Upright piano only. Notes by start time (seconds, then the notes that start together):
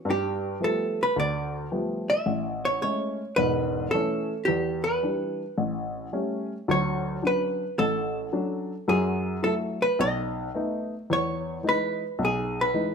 0.05 G2
0.60 F3 G3 A3 B3
1.16 D2
1.71 F3 G3 A3 B3
2.26 A1
2.81 G#3 A3 C#4
3.38 E1 G#2
3.94 E3 A3 C#4
4.48 E2
5.03 E3 G3 D4
5.58 A1
6.13 G3 A3 C#4
6.68 D2 F#3
7.22 F#3 C#4 D4
7.79 A1
8.33 F#3 C#4 D4
8.88 F#2 F#3
9.42 F#3 A3 E4
9.99 B1
10.55 A3 B3 D#4
11.10 E2
11.63 E3 G#3 D#4
12.19 B1
12.74 E3 G#3 D#4